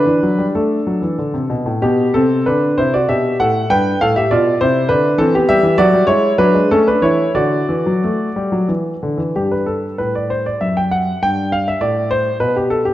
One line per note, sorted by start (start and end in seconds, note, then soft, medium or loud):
0.00 0.51 D4 medium
0.00 0.45 B4 medium
0.06 0.22 E3 medium
0.23 0.38 F#3 medium
0.38 0.54 G3 medium
0.55 0.78 A3 medium
0.55 1.47 D4 soft
0.55 1.51 A4 medium
0.87 1.02 F#3 medium
1.02 1.18 E3 medium
1.18 1.34 D3 medium
1.34 1.49 C3 medium
1.50 1.66 B2 medium
1.66 1.82 A2 medium
1.82 2.06 B2 medium
1.82 2.13 B3 medium
1.82 2.15 G4 medium
2.14 2.37 C3 medium
2.14 2.45 C4 medium
2.14 2.46 A4 medium
2.46 2.69 D3 medium
2.46 2.76 D4 medium
2.46 2.78 B4 medium
2.78 3.00 C3 medium
2.78 2.93 E4 medium
2.78 2.93 C5 medium
2.94 3.09 F#4 medium
2.94 3.09 D5 medium
3.08 3.31 B2 medium
3.08 3.38 G4 medium
3.08 3.35 E5 medium
3.40 3.62 A2 medium
3.40 3.69 A4 medium
3.40 3.71 F#5 medium
3.70 3.92 G2 medium
3.70 3.99 B4 medium
3.70 4.01 G5 medium
4.01 4.23 A2 medium
4.01 4.15 A4 medium
4.01 4.16 F5 loud
4.16 4.30 G4 medium
4.16 4.31 E5 medium
4.31 4.52 B2 medium
4.31 4.59 F4 medium
4.31 4.56 D5 medium
4.61 4.82 C3 medium
4.61 4.89 E4 medium
4.61 4.90 C5 loud
4.89 5.10 D3 medium
4.89 5.17 D4 medium
4.89 5.19 B4 medium
5.18 5.40 E3 medium
5.18 5.33 C4 medium
5.18 5.33 A4 loud
5.35 5.49 B3 medium
5.35 5.48 G4 medium
5.49 5.63 G3 medium
5.49 5.76 G4 medium
5.49 5.78 E5 loud
5.63 5.77 E3 medium
5.78 5.92 F#3 medium
5.78 6.07 F#4 medium
5.78 6.04 D5 loud
5.93 6.07 G3 medium
6.07 6.30 G#3 medium
6.07 6.37 E4 medium
6.07 6.34 C#5 loud
6.38 6.53 F#3 medium
6.38 6.68 D4 medium
6.38 6.70 B4 loud
6.54 6.69 G#3 medium
6.71 6.94 A3 medium
6.71 6.86 C#4 medium
6.71 6.87 A4 medium
6.88 7.03 D4 medium
6.88 7.03 B4 medium
7.02 7.26 E3 medium
7.02 7.34 E4 medium
7.02 7.31 C#5 medium
7.34 7.59 D3 medium
7.34 8.66 F#4 medium
7.34 8.69 D5 medium
7.69 7.85 E3 medium
7.86 8.02 F#3 medium
8.04 8.28 A3 medium
8.36 8.52 G3 medium
8.52 8.68 F#3 medium
8.68 8.93 E3 medium
9.03 9.19 D3 medium
9.17 9.34 E3 medium
9.36 9.86 G2 soft
9.36 11.17 G3 soft
9.36 9.52 G4 medium
9.51 9.67 B4 medium
9.66 9.98 A4 medium
9.98 10.48 A2 soft
9.98 10.14 B4 medium
10.15 10.30 D5 medium
10.30 10.45 C5 medium
10.46 10.61 D5 medium
10.61 11.09 F#2 soft
10.61 10.76 E5 medium
10.77 10.92 G5 medium
10.91 11.21 F#5 medium
11.22 11.69 G2 medium
11.22 12.94 G3 soft
11.22 11.52 G5 medium
11.52 11.66 F5 medium
11.68 11.82 E5 medium
11.81 12.28 A2 medium
11.81 12.10 D5 medium
12.11 12.35 C5 medium
12.40 12.87 B2 medium
12.40 12.54 B4 medium
12.56 12.70 G4 medium
12.70 12.84 A4 medium
12.85 12.94 G4 medium